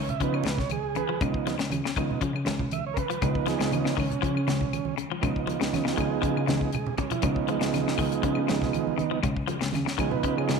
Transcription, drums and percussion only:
0.09 closed hi-hat, low conga
0.20 kick, closed hi-hat, high conga
0.34 claves
0.44 snare, closed hi-hat, high conga
0.57 kick, snare, low conga
0.70 closed hi-hat, high conga, claves
0.95 closed hi-hat, high conga
1.21 kick, closed hi-hat, high conga, low conga, claves
1.34 kick
1.47 snare, closed hi-hat, high conga
1.59 snare, closed hi-hat
1.72 closed hi-hat, high conga, claves
1.86 snare, high conga
1.96 kick, closed hi-hat, claves
2.11 low conga
2.21 kick, closed hi-hat, high conga
2.36 claves
2.46 snare, closed hi-hat, high conga
2.59 kick, low conga
2.71 closed hi-hat, high conga, claves
2.97 kick, closed hi-hat
3.10 closed hi-hat
3.22 kick, closed hi-hat, high conga, low conga, claves
3.35 kick
3.46 snare, closed hi-hat, high conga
3.60 snare, closed hi-hat
3.72 closed hi-hat, high conga, claves
3.86 snare
3.98 kick, open hi-hat, claves
4.10 closed hi-hat, low conga
4.23 kick, closed hi-hat, high conga
4.37 claves
4.48 snare, closed hi-hat, high conga
4.61 kick, low conga
4.73 closed hi-hat, high conga, claves
4.85 high conga
4.98 closed hi-hat
5.23 kick, closed hi-hat, high conga, low conga, claves
5.36 kick
5.47 closed hi-hat, high conga
5.61 snare, closed hi-hat
5.73 snare, closed hi-hat, high conga, claves
5.87 snare, high conga
5.98 kick, closed hi-hat, claves
6.23 kick, closed hi-hat
6.37 claves
6.48 snare, closed hi-hat, high conga
6.61 kick
6.72 closed hi-hat, low conga, claves
6.86 low conga
6.98 kick, closed hi-hat, low conga
7.10 closed hi-hat, low conga
7.22 kick, closed hi-hat, high conga, low conga, claves
7.36 kick
7.48 closed hi-hat, high conga
7.61 snare, closed hi-hat
7.74 snare, closed hi-hat, high conga, claves
7.88 snare, high conga
7.98 kick, open hi-hat, claves
8.12 closed hi-hat
8.23 kick, closed hi-hat
8.35 claves
8.48 snare, closed hi-hat, high conga
8.62 kick, snare, low conga
8.73 closed hi-hat, high conga, claves
8.87 high conga
8.99 closed hi-hat, high conga
9.23 kick, closed hi-hat, high conga, low conga, claves
9.36 kick
9.48 closed hi-hat, high conga
9.61 snare, closed hi-hat
9.73 snare, closed hi-hat, high conga, claves
9.87 snare, high conga
9.99 kick, closed hi-hat, claves
10.11 low conga
10.23 kick, closed hi-hat, high conga
10.38 claves
10.49 snare, closed hi-hat, high conga

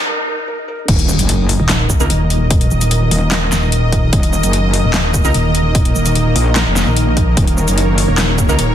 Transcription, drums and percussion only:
0.88 kick, closed hi-hat, crash
0.99 closed hi-hat
1.09 shaker
1.19 closed hi-hat, shaker
1.29 closed hi-hat
1.49 open hi-hat
1.69 snare, clap, closed hi-hat
1.90 kick, shaker
2.00 shaker
2.10 closed hi-hat
2.30 closed hi-hat
2.51 kick, closed hi-hat
2.61 closed hi-hat
2.71 shaker
2.81 closed hi-hat, shaker
2.91 closed hi-hat
3.11 open hi-hat
3.32 snare, clap, closed hi-hat
3.52 snare, shaker
3.72 closed hi-hat
3.92 kick, closed hi-hat
4.13 kick, closed hi-hat
4.23 closed hi-hat
4.33 shaker
4.43 closed hi-hat, shaker
4.53 closed hi-hat
4.74 open hi-hat
4.94 snare, clap, closed hi-hat
5.14 kick, shaker
5.25 shaker
5.34 closed hi-hat
5.55 closed hi-hat
5.75 kick, closed hi-hat
5.85 closed hi-hat
5.95 shaker
6.06 closed hi-hat, shaker
6.15 closed hi-hat
6.36 open hi-hat
6.56 snare, clap, closed hi-hat
6.76 snare, shaker
6.96 closed hi-hat
7.17 kick, closed hi-hat
7.37 kick, closed hi-hat
7.47 closed hi-hat
7.57 shaker
7.68 closed hi-hat, shaker
7.78 closed hi-hat
7.98 open hi-hat
8.18 snare, clap, closed hi-hat
8.38 kick, shaker
8.49 shaker
8.59 closed hi-hat

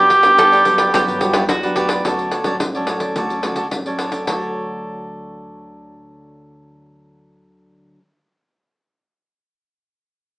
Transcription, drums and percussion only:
0.10 pandeiro
0.23 pandeiro
0.38 pandeiro
0.53 pandeiro
0.65 pandeiro
0.78 pandeiro
0.94 pandeiro
1.08 pandeiro
1.21 pandeiro
1.33 pandeiro
1.49 pandeiro
1.63 pandeiro
1.76 pandeiro
1.89 pandeiro
2.05 pandeiro
2.19 pandeiro
2.31 pandeiro
2.44 pandeiro
2.60 pandeiro
2.75 pandeiro
2.87 pandeiro
3.00 pandeiro
3.16 pandeiro
3.30 pandeiro
3.43 pandeiro
3.56 pandeiro
3.71 pandeiro
3.86 pandeiro
3.99 pandeiro
4.12 pandeiro
4.27 pandeiro

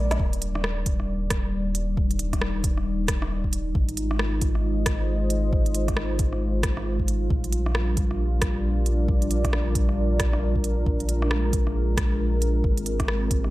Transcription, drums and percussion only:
0.11 snare, closed hi-hat
0.20 kick
0.33 closed hi-hat
0.42 closed hi-hat
0.55 cross-stick
0.64 cross-stick
0.86 kick, closed hi-hat
1.00 cross-stick
1.30 kick, cross-stick, closed hi-hat
1.75 closed hi-hat
1.97 kick
2.11 closed hi-hat
2.19 closed hi-hat
2.33 kick, cross-stick, closed hi-hat
2.41 cross-stick
2.64 kick, closed hi-hat
2.77 cross-stick
3.08 kick, cross-stick, closed hi-hat
3.22 cross-stick
3.44 kick
3.53 closed hi-hat
3.75 kick
3.89 closed hi-hat
3.97 closed hi-hat
4.11 cross-stick
4.19 cross-stick
4.41 kick, closed hi-hat
4.55 cross-stick
4.86 kick, cross-stick, closed hi-hat
5.30 closed hi-hat
5.53 kick
5.66 closed hi-hat
5.75 closed hi-hat
5.88 kick, cross-stick, closed hi-hat
5.97 cross-stick
6.19 kick, closed hi-hat
6.33 cross-stick
6.63 kick, cross-stick, closed hi-hat
6.77 cross-stick
7.00 kick
7.08 closed hi-hat
7.30 kick
7.44 closed hi-hat
7.52 closed hi-hat
7.66 cross-stick
7.75 cross-stick
7.97 kick, closed hi-hat
8.11 cross-stick
8.42 kick, cross-stick, closed hi-hat
8.86 closed hi-hat
9.08 kick
9.22 closed hi-hat
9.31 closed hi-hat
9.44 kick, cross-stick, closed hi-hat
9.53 cross-stick
9.75 kick, closed hi-hat
9.89 cross-stick
10.20 kick, cross-stick, closed hi-hat
10.33 cross-stick
10.56 kick
10.64 closed hi-hat
10.86 kick
11.00 closed hi-hat
11.09 closed hi-hat
11.22 cross-stick
11.31 cross-stick
11.53 kick, closed hi-hat
11.67 cross-stick
11.97 kick, cross-stick, closed hi-hat
12.42 closed hi-hat
12.64 kick
12.77 closed hi-hat
12.86 closed hi-hat
13.00 kick, cross-stick, closed hi-hat
13.08 cross-stick
13.31 kick, closed hi-hat
13.44 cross-stick

